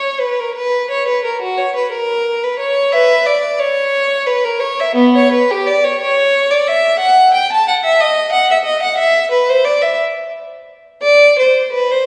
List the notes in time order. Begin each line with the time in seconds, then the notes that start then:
Already playing: C#5
0.20 B4
0.40 A#4
0.55 B4
0.90 C#5
1.08 B4
1.24 A#4
1.41 F#4
1.58 C#5
1.76 B4
1.91 A#4
2.43 B4
2.60 C#5
2.92 B4 E5
3.26 D5
3.59 C#5
4.26 B4
4.44 A#4
4.60 C#5
4.80 E5
4.95 B3
5.16 C#5
5.32 B4
5.51 G4
5.66 D5
5.84 C#5
6.01 C#5
6.51 D5
6.67 E5
6.99 F#5
7.34 G5
7.52 A5
7.68 F#5
7.84 E5
8.00 D#5
8.33 F#5
8.51 E5
8.65 D#5
8.83 F#5
8.98 E5
9.31 B4
9.50 C5
9.65 D5
9.82 E5
11.02 D5
11.39 C5
11.72 B4
11.91 C5